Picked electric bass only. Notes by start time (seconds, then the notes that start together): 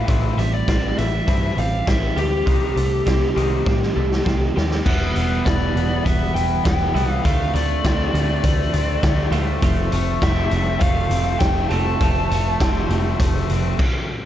0.08 A1
0.37 A1
0.68 A1
0.98 A1
1.28 G2
1.57 A1
1.88 A1
2.16 D2
2.47 C2
2.76 C2
3.07 C2
3.36 C2
3.67 A2
3.96 C2
4.26 C2
4.57 D#2
4.86 E1
5.16 E1
5.46 E1
5.74 E1
6.06 E1
6.35 E1
6.66 E1
6.95 C2
7.25 D2
7.54 D2
7.85 D2
8.14 D2
8.44 D2
8.73 D2
9.03 D2
9.31 D2
9.62 F1
9.92 F1
10.22 F1
10.51 F1
10.81 F1
11.10 F1
11.41 F1
11.70 F1
12.01 F1
12.30 F1
12.61 F1
12.89 F1
13.20 F1
13.50 F1